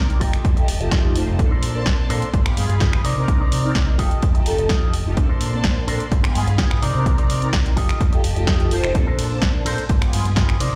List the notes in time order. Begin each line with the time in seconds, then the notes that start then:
Already playing: C2 C4 D#4 A#4 D5 A#5
0.10 closed hi-hat
0.20 F1 A3 D#4 F4 G4 A4 D#5 A5, kick, open hi-hat
0.33 finger snap, closed hi-hat
0.45 F2, kick, closed hi-hat
0.56 A3 D#4 F4 G4, muted clean electric guitar stroke, muted fingered electric bass stroke, closed hi-hat
0.68 F1, muted clean electric guitar stroke, open hi-hat
0.80 F1 A3 D#4 F4 G4, muted clean electric guitar stroke, closed hi-hat
0.91 F2 F4 G4 A4 D#5, kick, snare, closed hi-hat
1.15 F1 A3 D#4 F4 C5, open hi-hat
1.28 F1
1.39 A#1 A#3 C4 D4 A4 D5 A5 C6, muted clean electric guitar stroke, kick, closed hi-hat
1.51 D4 A4 A#4 C5
1.62 A#2, open hi-hat
1.74 A#3 C4 D4 A5
1.86 A#1, kick, snare, closed hi-hat
2.09 A#2 A#3 C4 D4 A4 A#4 C5, open hi-hat
2.22 closed hi-hat
2.34 G1 G#4 F5 B5, kick, closed hi-hat
2.45 G#3 B3 F4 G4, finger snap, muted clean electric guitar stroke, closed hi-hat
2.57 G2 G#3 B3 F4 G#4, muted clean electric guitar stroke, open hi-hat
2.69 G2, muted clean electric guitar stroke, closed hi-hat
2.80 G1 G#3 B3 F4 G4 G#4 B4, kick, snare, closed hi-hat
2.93 finger snap
3.04 C3 D#4 A#4 C5 D5 A#5, open hi-hat
3.16 C3 C4 D4 D#4 A#4
3.28 C2 C4 D4 D#4 A#4, kick, closed hi-hat
3.40 D#4 A#4 C5 D5
3.52 C3, open hi-hat
3.64 C4 D#4 A#4 D5
3.75 C2, kick, snare, closed hi-hat
3.98 F1 A3 D#4 F4 G4 A4 D#5 A5, kick, open hi-hat
4.11 closed hi-hat
4.22 F2, kick, closed hi-hat
4.35 A3 D#4 F4 G4, muted clean electric guitar stroke, muted fingered electric bass stroke, closed hi-hat
4.46 F1 A3 D#4 F4 A4, muted clean electric guitar stroke, open hi-hat
4.58 F1, muted clean electric guitar stroke, closed hi-hat
4.69 F2 A3 D#4 F4 G4 A4 D#5, kick, snare, closed hi-hat
4.93 F1, open hi-hat
5.05 F1 A3 D#4 F4 G4
5.17 A#1 A#3 C4 D4 A4 D5 A5 C6, muted clean electric guitar stroke, kick, closed hi-hat
5.29 D4 A4 A#4 C5
5.41 A#2, open hi-hat
5.53 A#3 C4 D4 A5
5.64 A#1, kick, snare, closed hi-hat
5.87 A#2 A#3 C4 D4 A4 A#4 C5, open hi-hat
6.00 closed hi-hat
6.11 G1 G#4 F5 B5, kick, closed hi-hat
6.23 G#3 B3 F4 G4, finger snap, muted clean electric guitar stroke, closed hi-hat
6.35 G2 G#3 B3 F4 G#4, muted clean electric guitar stroke, open hi-hat
6.47 G2, muted clean electric guitar stroke, closed hi-hat
6.58 G1 G#3 B3 F4 G4 G#4 B4, kick, snare, closed hi-hat
6.71 finger snap
6.82 C3 D#4 A#4 C5 D5 A#5, open hi-hat
6.94 C3 C4 D4 D#4 A#4
7.05 C2 C4 D4 D#4 A#4, kick, closed hi-hat
7.18 D#4 A#4 C5 D5, closed hi-hat
7.30 C3, open hi-hat
7.41 C4 D#4 A#4 D5, closed hi-hat
7.53 C2, kick, snare, closed hi-hat
7.66 closed hi-hat
7.76 F1 A3 D#4 F4 G4 A4 D#5 A5, kick, open hi-hat
7.89 finger snap, closed hi-hat
8.01 F2, kick, closed hi-hat
8.12 A3 D#4 F4 G4, muted clean electric guitar stroke, muted fingered electric bass stroke, closed hi-hat
8.24 F1, muted clean electric guitar stroke, open hi-hat
8.36 F1 A3 D#4 F4 G4, muted clean electric guitar stroke, closed hi-hat
8.47 F2 F4 G4 A4 D#5, kick, snare, closed hi-hat
8.60 closed hi-hat
8.71 F1 A3 D#4 F4 C5, open hi-hat
8.84 F1, finger snap, closed hi-hat
8.94 A#1 A#3 C4 D4 A4 C5, muted clean electric guitar stroke, kick, closed hi-hat
9.07 D4 A4 A#4 C5
9.18 A#2, open hi-hat, ride
9.30 A#3 C4 D4 A5
9.42 A#1, kick, snare, closed hi-hat
9.65 A#2 A#3 C4 D4 A4 A#4 C5, open hi-hat, ride
9.78 closed hi-hat
9.89 G1 F4 B4 G#5, kick, closed hi-hat
10.01 G#3 B3 F4 G4, finger snap, muted clean electric guitar stroke, closed hi-hat
10.13 G2 G#3 B3 F4 G#4, muted clean electric guitar stroke, open hi-hat, ride
10.25 G2, muted clean electric guitar stroke, closed hi-hat
10.36 G1 G#3 B3 F4 G4 G#4 B4, kick, snare, closed hi-hat
10.49 finger snap
10.60 C3 D#4 A#4 C5 D5 A#5, open hi-hat, ride